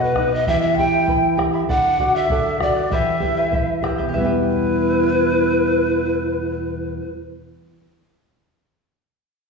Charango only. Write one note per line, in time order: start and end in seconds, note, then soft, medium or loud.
0.00 0.16 B4 medium
0.00 0.16 D#5 medium
0.00 0.17 F#5 medium
0.17 0.32 B4 medium
0.17 0.32 D#5 medium
0.17 0.31 F#5 medium
0.32 0.48 D#5 soft
0.32 0.47 F#5 medium
0.47 0.77 E4 medium
0.47 0.78 G4 medium
0.47 0.78 E5 medium
0.47 0.76 G5 medium
0.47 0.78 B5 medium
0.78 0.93 E4 medium
0.78 0.93 E5 medium
0.78 0.93 G5 medium
0.78 0.92 B5 medium
0.94 1.07 E4 soft
0.94 1.07 E5 soft
0.94 1.08 B5 medium
1.08 1.36 E4 medium
1.08 1.37 E5 medium
1.08 1.36 G5 medium
1.08 1.37 B5 medium
1.37 1.53 E4 medium
1.37 1.54 E5 medium
1.37 1.53 G5 medium
1.37 1.53 B5 medium
1.54 1.70 E4 soft
1.54 1.69 E5 soft
1.54 1.69 B5 medium
1.69 1.98 A4 medium
1.69 1.99 D5 medium
1.69 2.00 F#5 medium
2.00 2.15 A4 medium
2.00 2.15 D5 medium
2.00 2.14 F#5 medium
2.15 2.30 D5 soft
2.15 2.30 F#5 medium
2.31 2.60 A4 medium
2.31 2.60 D5 medium
2.31 2.61 F#5 medium
2.62 2.76 A4 medium
2.62 2.76 D5 medium
2.62 2.75 F#5 medium
2.77 2.92 D5 soft
2.77 2.91 F#5 medium
2.91 3.20 E4 medium
2.91 3.22 G4 medium
2.91 3.20 B4 medium
2.91 3.19 E5 medium
2.91 3.21 G5 medium
3.20 3.37 E4 medium
3.20 3.37 B4 medium
3.20 3.36 E5 medium
3.20 3.36 G5 medium
3.37 3.52 E4 soft
3.37 3.52 B4 soft
3.37 3.52 G5 medium
3.52 3.82 E4 medium
3.52 3.83 B4 medium
3.52 3.81 E5 medium
3.52 3.83 G5 medium
3.83 3.98 E4 medium
3.83 3.98 B4 medium
3.83 3.98 E5 medium
3.83 3.97 G5 medium
3.98 4.14 E4 soft
3.98 4.14 B4 medium
3.98 4.13 G5 medium
4.09 7.59 G4 medium
4.14 7.68 E4 medium
4.14 7.64 E5 medium
4.21 7.71 B4 medium
4.21 7.75 G5 medium